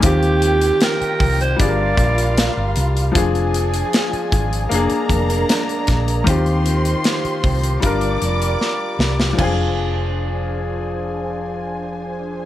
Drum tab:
CC |----------------|----------------|----------------|x---------------|
HH |xxxxxxoxx-xxx-xx|xxxxxxxxxxxxxxxx|xxxxxxoxxxxx----|----------------|
SD |----o-------o---|----o-------o-o-|----o-------o-oo|----------------|
FT |----------------|----------------|----------------|o---------------|
BD |o-----o-o-o-----|o-----o---o---o-|o-----o-o-------|o---------------|